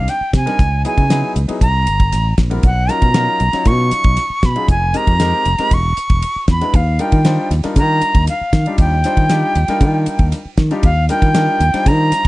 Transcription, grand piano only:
0.00 0.10 G3 medium
0.00 0.10 C4 medium
0.00 0.10 D4 medium
0.00 0.10 D#4 medium
0.00 0.10 G4 medium
0.46 0.59 G3 medium
0.46 0.59 C4 medium
0.46 0.59 D4 medium
0.46 0.59 D#4 medium
0.46 0.59 A#4 medium
0.85 1.02 F#3 medium
0.85 1.02 B3 medium
0.85 1.02 D#4 medium
0.85 1.02 E4 medium
0.85 1.02 G#4 medium
1.10 1.35 F#3 medium
1.10 1.35 B3 medium
1.10 1.35 D#4 medium
1.10 1.35 E4 medium
1.10 1.35 G#4 medium
1.48 1.61 F#3 medium
1.48 1.61 B3 medium
1.48 1.61 D#4 medium
1.48 1.61 E4 medium
1.48 1.61 G#4 medium
2.50 2.63 G3 medium
2.50 2.63 C4 medium
2.50 2.64 E4 medium
2.50 2.64 F#4 medium
2.50 2.64 A#4 medium
2.88 3.06 F#3 medium
2.88 3.06 C#4 medium
2.88 3.06 D#4 medium
2.88 3.06 F4 medium
2.88 3.06 A#4 medium
3.14 3.40 F#3 medium
3.14 3.40 C#4 medium
3.14 3.40 D#4 medium
3.14 3.40 F4 medium
3.14 3.40 A#4 medium
3.53 4.20 F#3 medium
3.53 4.20 C#4 medium
3.53 4.20 D#4 medium
3.53 4.20 F4 medium
3.53 4.20 C#5 medium
4.56 4.69 F#3 medium
4.56 4.69 C#4 medium
4.56 4.69 D#4 medium
4.56 4.69 F4 medium
4.56 4.69 G#4 medium
4.94 5.11 G#3 medium
4.94 5.11 C4 medium
4.94 5.11 D#4 medium
4.94 5.11 G4 medium
4.94 5.11 A#4 medium
5.20 5.45 G#3 medium
5.20 5.45 C4 medium
5.20 5.45 D#4 medium
5.20 5.45 G4 medium
5.20 5.45 A#4 medium
5.59 5.71 G#3 medium
5.59 5.71 C4 medium
5.59 5.72 D#4 medium
5.59 5.72 G4 soft
5.59 5.72 A#4 medium
6.61 6.74 G#3 medium
6.61 6.74 D4 medium
6.61 6.74 E4 medium
6.61 6.74 F#4 medium
6.61 6.74 B4 medium
6.99 7.16 G3 medium
6.99 7.16 D4 medium
6.99 7.16 D#4 medium
6.99 7.16 F4 medium
6.99 7.16 A#4 medium
7.25 7.50 G3 medium
7.25 7.50 D4 medium
7.25 7.50 D#4 medium
7.25 7.50 F4 medium
7.25 7.50 C5 medium
7.64 8.30 G3 medium
7.64 8.30 D4 medium
7.64 8.30 D#4 medium
7.64 8.30 F4 medium
7.64 8.31 A#4 medium
8.67 8.92 G3 medium
8.67 8.92 D4 medium
8.67 8.92 D#4 medium
8.67 8.92 F4 medium
8.67 8.92 G4 medium
9.05 9.22 G3 medium
9.05 9.22 D4 medium
9.05 9.22 D#4 medium
9.05 9.22 F4 medium
9.05 9.22 C5 medium
9.31 9.55 G3 medium
9.31 9.56 D4 medium
9.31 9.56 D#4 medium
9.31 9.56 F4 medium
9.31 9.56 G4 medium
9.69 10.35 G3 medium
9.69 10.36 D4 medium
9.69 10.36 D#4 medium
9.69 10.36 F4 medium
9.69 10.36 A#4 medium
10.71 10.84 G3 medium
10.71 10.84 D4 medium
10.71 10.84 D#4 medium
10.71 10.84 F4 medium
10.71 10.84 G4 medium
11.09 11.26 G3 medium
11.09 11.27 D4 medium
11.09 11.26 D#4 medium
11.09 11.26 F4 medium
11.09 11.27 A#4 medium
11.34 11.60 G3 medium
11.34 11.60 D4 medium
11.34 11.60 D#4 medium
11.34 11.60 F4 medium
11.34 11.60 A#4 medium
11.74 12.28 G3 medium
11.74 12.28 D4 medium
11.74 12.28 D#4 medium
11.74 12.28 F4 medium
11.74 12.28 C5 medium

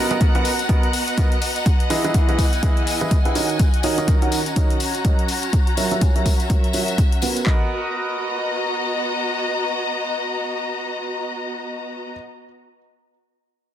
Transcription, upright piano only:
0.11 0.18 B3 medium
0.11 0.18 F#4 medium
0.11 0.18 A#4 medium
0.11 0.18 B4 medium
0.11 0.18 D#5 loud
0.21 0.32 B3 medium
0.21 0.32 F#4 medium
0.21 0.32 A#4 medium
0.21 0.32 B4 medium
0.21 0.32 D#5 medium
0.35 0.50 B3 medium
0.35 0.50 F#4 medium
0.35 0.50 A#4 medium
0.35 0.50 B4 medium
0.35 0.50 F#5 loud
0.69 0.87 B3 medium
0.69 0.87 F#4 medium
0.69 0.87 A#4 medium
0.69 0.87 B4 medium
0.69 0.87 D#5 medium
1.18 1.35 B3 medium
1.18 1.35 F#4 medium
1.18 1.35 A#4 medium
1.18 1.35 B4 medium
1.18 1.35 D#5 medium
1.90 2.02 E3 medium
1.90 2.02 E4 medium
1.90 2.02 G#4 medium
1.90 2.02 B4 medium
1.90 2.02 D#5 medium
2.04 2.12 E3 medium
2.04 2.12 E4 medium
2.04 2.12 G#4 medium
2.04 2.12 B4 medium
2.04 2.12 D#5 loud
2.14 2.26 E3 medium
2.14 2.26 E4 medium
2.14 2.26 G#4 medium
2.14 2.26 B4 medium
2.14 2.26 F#5 medium
2.29 2.44 E3 medium
2.29 2.44 E4 medium
2.29 2.44 G#4 medium
2.29 2.44 B4 medium
2.29 2.44 D#5 medium
2.63 2.98 E3 medium
2.63 2.98 E4 medium
2.63 2.98 G#4 medium
2.63 2.98 B4 medium
2.63 2.98 D#5 medium
3.01 3.16 E3 medium
3.01 3.16 E4 medium
3.01 3.16 G#4 medium
3.01 3.16 B4 medium
3.01 3.16 D#5 loud
3.25 3.34 E4 medium
3.25 3.34 G#4 medium
3.25 3.34 B4 medium
3.25 3.34 F#5 medium
3.35 3.62 D#3 medium
3.35 3.62 F#4 medium
3.35 3.62 A#4 medium
3.35 3.62 C#5 medium
3.35 3.62 D#5 medium
3.84 3.96 D#3 medium
3.84 3.96 F#4 medium
3.84 3.96 A#4 medium
3.84 3.96 C#5 medium
3.84 3.96 D#5 medium
3.98 4.06 D#3 loud
3.98 4.06 F#4 medium
3.98 4.06 A#4 medium
3.98 4.06 C#5 medium
3.98 4.06 D#5 loud
4.08 4.19 F#4 medium
4.22 4.37 D#3 medium
4.22 4.37 F#4 medium
4.22 4.37 A#4 medium
4.22 4.37 C#5 medium
4.22 4.37 F#5 loud
4.56 4.74 D#3 medium
4.56 4.74 F#4 medium
4.56 4.74 A#4 medium
4.56 4.74 C#5 medium
4.56 4.74 D#5 medium
5.05 5.22 F#3 medium
5.05 5.22 F#4 medium
5.05 5.22 A#4 medium
5.05 5.22 C#5 medium
5.05 5.22 D#5 medium
5.77 5.89 F#3 medium
5.77 5.89 F#4 medium
5.77 5.89 A#4 medium
5.77 5.89 C#5 medium
5.77 5.89 E5 medium
5.91 5.99 F#3 medium
5.91 5.99 F#4 medium
5.91 5.99 A#4 medium
5.91 5.99 C#5 medium
5.91 5.99 E5 loud
6.01 6.13 F#3 medium
6.01 6.13 F#4 medium
6.01 6.13 A#4 medium
6.01 6.13 C#5 medium
6.01 6.13 G#5 medium
6.16 6.31 F#3 medium
6.16 6.31 F#4 medium
6.16 6.31 A#4 medium
6.16 6.31 C#5 medium
6.16 6.31 E5 loud
6.50 6.72 F#3 medium
6.50 6.72 F#4 medium
6.50 6.72 A#4 medium
6.50 6.72 C#5 medium
6.50 6.72 E5 medium
6.74 6.92 F#3 medium
6.74 6.92 F#4 medium
6.74 6.92 A#4 medium
6.74 6.92 C#5 medium
6.74 6.92 E5 medium
7.22 7.68 B3 medium
7.22 7.45 F#4 medium
7.22 7.45 A#4 medium
7.22 7.45 B4 medium
7.22 7.68 F#5 medium
7.47 12.12 F#4 medium
7.47 12.12 A#4 medium
7.47 12.12 B4 medium
7.47 12.12 D#5 medium

